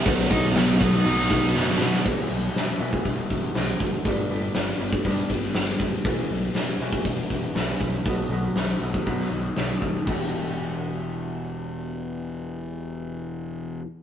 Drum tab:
CC |x-x-x-x-x-x-----|x---------------|----------------|----------------|
HH |----------------|--o-o-o-o-o-o-o-|o-o-o-o-o-o-o-o-|o-o-o-o-o-o-o-o-|
SD |----ooo-----oooo|----o-------o---|----o------oo---|----o-------o---|
BD |o-o---o---o-----|o------oo-o---o-|o------oo-o---o-|o------oo-o---o-|

CC |----------------|x---------------|----------------|
HH |o-o-o-o-o-o-o-o-|----------------|----------------|
SD |----o----o--o---|----------------|----------------|
BD |o------oo-----o-|o---------------|----------------|